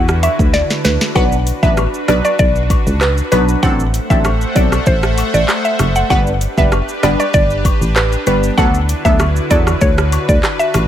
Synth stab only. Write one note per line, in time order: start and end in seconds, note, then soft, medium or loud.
1.15 1.36 F#3 loud
1.15 1.36 B3 medium
1.15 1.36 D4 medium
1.15 1.36 B4 loud
1.63 1.82 F#3 medium
1.63 1.82 B3 medium
1.63 1.82 D4 medium
1.63 1.82 B4 medium
2.08 2.29 F#3 medium
2.08 2.29 B3 medium
2.08 2.29 D4 medium
2.08 2.29 B4 medium
3.32 3.61 F#3 medium
3.32 3.61 B3 medium
3.32 3.61 D4 medium
3.32 3.61 B4 medium
3.63 3.83 F#3 loud
3.63 3.84 C4 medium
3.63 3.84 D4 medium
3.63 3.84 A4 loud
4.10 4.29 F#3 medium
4.10 4.30 C4 medium
4.10 4.30 D4 medium
4.10 4.30 A4 medium
4.55 4.76 F#3 medium
4.55 4.76 C4 medium
4.55 4.76 D4 medium
4.55 4.76 A4 medium
6.10 6.31 G3 loud
6.10 6.31 B3 loud
6.10 6.31 D4 medium
6.10 6.31 B4 loud
6.58 6.77 G3 medium
6.58 6.77 B3 medium
6.58 6.77 D4 medium
6.58 6.77 B4 medium
7.03 7.24 G3 medium
7.03 7.24 B3 medium
7.03 7.24 D4 medium
7.03 7.24 B4 medium
8.27 8.55 G3 medium
8.27 8.56 B3 medium
8.27 8.56 D4 medium
8.27 8.56 B4 medium
8.58 8.78 F#3 loud
8.58 8.78 B3 medium
8.58 8.79 D4 medium
8.58 8.79 A4 loud
9.05 9.24 F#3 medium
9.05 9.24 B3 medium
9.05 9.24 D4 medium
9.05 9.25 A4 medium
9.51 9.71 F#3 medium
9.51 9.71 B3 medium
9.51 9.71 D4 medium
9.51 9.71 A4 medium